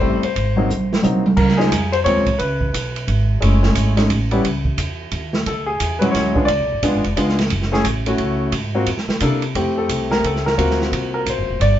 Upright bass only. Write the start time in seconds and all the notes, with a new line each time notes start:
0.01 A1
0.22 muted upright bass stroke
0.36 G#1
0.69 A#1
1.03 C2
1.37 C#2
1.71 F2
2.05 D#2
2.17 C#2
2.28 A#1
2.39 C#2
2.73 B1
3.08 G#1
3.42 F#1
3.75 G#1
4.09 A1
4.44 C#2
4.77 E2
5.12 D#2
5.46 D2
5.81 E2
6.14 D2
6.48 C#2
6.60 B1
6.71 G#1
6.83 B1
6.94 G#1
7.05 F1
7.17 C#2
7.50 F#1
7.84 A1
8.18 C#2
8.52 G#2
8.87 F2
9.07 muted upright bass stroke
9.21 C3
9.55 F2
9.89 C2
10.24 C#2
10.58 D2
10.92 C2
11.26 A#1
11.37 F#1
11.49 D1
11.60 G1